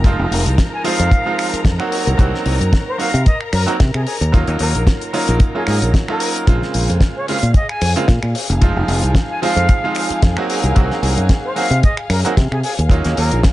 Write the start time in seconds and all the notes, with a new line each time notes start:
Already playing: F1 A#4 A#5
0.04 F3 G#3 C4 D#4 F4, kick, closed hi-hat
0.19 F1
0.31 F1, open hi-hat
0.46 C2, closed hi-hat
0.58 kick, snare, closed hi-hat
0.73 G#5
0.84 F3 G#3 C4 D#4 F4 F5, open hi-hat
0.99 F2, closed hi-hat
1.11 kick, closed hi-hat
1.26 F3 G#3 C4 D#4 F4
1.39 finger snap, open hi-hat
1.53 muted fingered electric bass stroke, closed hi-hat
1.65 F2, kick, snare, closed hi-hat
1.79 F#3 A#3 C4 D#4 F#4, finger snap
1.92 open hi-hat
2.07 C2, closed hi-hat
2.18 C2 F#3 A#3 C4 D#4 F#4, kick, closed hi-hat
2.34 snare
2.46 C2, open hi-hat
2.60 F#2, closed hi-hat
2.73 kick, snare, closed hi-hat
2.87 C5
2.98 F#3 A#3 C4 D#4 F#4 F5, open hi-hat
3.14 C3, closed hi-hat
3.26 D#5, kick, closed hi-hat
3.41 finger snap
3.52 F#2 A#4, finger snap, open hi-hat
3.66 F#3 A#3 C4 D#4 F#4 A#4, closed hi-hat
3.80 C3, kick, snare, closed hi-hat
3.94 C3 G#4, finger snap
4.06 G#4, open hi-hat
4.21 D#2, closed hi-hat
4.32 F#3 A#3 C#4 D#4 F4, kick, closed hi-hat
4.48 D#2, closed hi-hat
4.59 D#2 A#4, open hi-hat
4.75 A#1, closed hi-hat
4.87 kick, snare, closed hi-hat
5.01 closed hi-hat
5.13 F#3 A#3 C#4 D#4 F4 A#4, open hi-hat
5.28 A#1, closed hi-hat
5.40 kick, closed hi-hat
5.55 F#3 A#3 C#4 D#4 F4 G#4
5.67 G#2 G#4, finger snap, open hi-hat
5.82 A#1, closed hi-hat
5.94 kick, snare, closed hi-hat
6.08 F#3 A#3 C#4 D#4 F4 A#4, finger snap
6.20 open hi-hat
6.36 closed hi-hat
6.47 A#1 C#3 G#3 A#3 C4 F4 G#4 F5, kick, closed hi-hat
6.62 snare
6.74 A#1, open hi-hat
6.90 F2, closed hi-hat
7.01 kick, snare, closed hi-hat
7.16 C#5
7.28 C#3 G#3 A#3 C4 F4 F5, open hi-hat
7.43 A#2, closed hi-hat
7.54 D#5, kick, closed hi-hat
7.69 G#5, finger snap
7.81 F2, finger snap, open hi-hat
7.96 C#3 G#3 A#3 C4 F4, closed hi-hat
8.08 A#2, kick, snare, closed hi-hat
8.23 A#2, finger snap
8.35 open hi-hat
8.50 F1, closed hi-hat
8.61 F3 G#3 C4 D#4 F4, kick, closed hi-hat
8.76 F1
8.88 F1, open hi-hat
9.03 C2, closed hi-hat
9.15 kick, snare, closed hi-hat
9.30 G#5
9.42 F3 G#3 C4 D#4 F4 F5, open hi-hat
9.56 F2, closed hi-hat
9.69 kick, closed hi-hat
9.84 F3 G#3 C4 D#4 F4
9.95 finger snap, open hi-hat
10.10 muted fingered electric bass stroke, closed hi-hat
10.22 F2, kick, snare, closed hi-hat
10.37 F#3 A#3 C4 D#4 F#4, finger snap
10.50 open hi-hat
10.63 C2, closed hi-hat
10.75 C2 F#3 A#3 C4 D#4 F#4, kick, closed hi-hat
10.91 snare
11.03 C2, open hi-hat
11.17 F#2, closed hi-hat
11.29 kick, snare, closed hi-hat
11.45 C5
11.56 F#3 A#3 C4 D#4 F#4 F5, open hi-hat
11.71 C3, closed hi-hat
11.83 D#5, kick, closed hi-hat
11.97 finger snap
12.10 F#2 A#4, finger snap, open hi-hat
12.24 F#3 A#3 C4 D#4 F#4 A#4, closed hi-hat
12.37 C3, kick, snare, closed hi-hat
12.51 C3 G#4, finger snap
12.63 G#4, open hi-hat
12.79 D#2, closed hi-hat
12.89 F#3 A#3 C#4 D#4 F4, kick, closed hi-hat
13.04 D#2, snare, closed hi-hat
13.17 D#2 A#4, open hi-hat
13.31 A#1, closed hi-hat
13.43 kick, snare, closed hi-hat